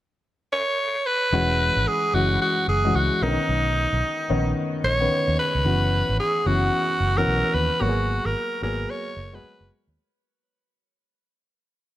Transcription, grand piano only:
1.32 1.92 E3 medium
1.32 1.93 G#3 medium
1.32 1.93 C#4 medium
1.32 1.93 F#4 loud
2.14 2.64 E3 medium
2.14 2.64 G#3 medium
2.14 2.64 C#4 medium
2.14 2.64 F#4 medium
2.84 3.21 E3 medium
2.84 3.22 G#3 medium
2.84 3.21 C#4 medium
2.84 3.22 F#4 medium
3.22 3.30 D3 medium
3.22 4.10 B3 medium
3.22 4.10 C#4 medium
3.22 4.10 A#4 medium
3.28 4.13 D#3 medium
4.29 4.80 D#3 loud
4.29 4.80 B3 medium
4.29 4.80 C#4 medium
4.29 4.80 D#4 medium
5.00 5.48 D#3 medium
5.00 5.48 B3 medium
5.00 5.49 C#4 medium
5.00 5.49 B4 medium
5.65 6.25 E3 medium
5.65 6.25 B3 medium
5.65 6.25 C#4 medium
5.65 6.26 F#4 medium
6.46 6.96 E3 medium
6.46 6.96 B3 medium
6.46 6.97 C#4 medium
6.46 6.97 F#4 medium
7.17 7.65 E3 medium
7.17 7.65 B3 medium
7.17 7.65 C#4 medium
7.17 7.65 F#4 medium
7.81 8.41 F#3 medium
7.81 8.41 A#3 medium
7.81 8.41 B3 medium
7.81 7.90 F#4 medium
7.88 8.45 G#4 medium
8.62 9.12 F#3 medium
8.62 9.13 A#3 medium
8.62 9.13 B3 medium
8.62 9.13 G#4 medium
9.33 9.81 F#3 medium
9.33 9.81 G#3 medium
9.33 9.81 B3 medium
9.33 9.81 G#4 medium

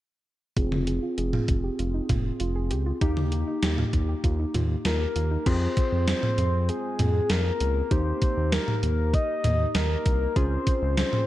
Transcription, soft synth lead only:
4.85 5.48 A#4 loud
5.47 6.07 C5 loud
6.08 6.70 C5 loud
6.69 7.32 G#4 loud
7.30 7.93 A#4 loud
7.92 8.52 C5 loud
8.53 9.16 A#4 loud
9.14 9.77 D#5 loud
9.75 10.38 A#4 loud
10.36 10.97 C5 loud
10.97 11.27 C5 loud

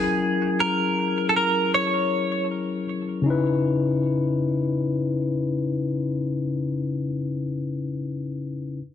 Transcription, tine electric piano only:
0.00 2.83 F#3 medium
0.00 2.83 C#4 medium
0.00 2.84 E4 medium
0.00 2.84 G#4 medium
0.00 2.85 A#4 medium
3.22 6.42 C#3 medium
3.22 6.45 C#4 medium
3.26 6.47 D#4 medium
3.26 6.49 E4 medium
3.30 6.51 B4 loud

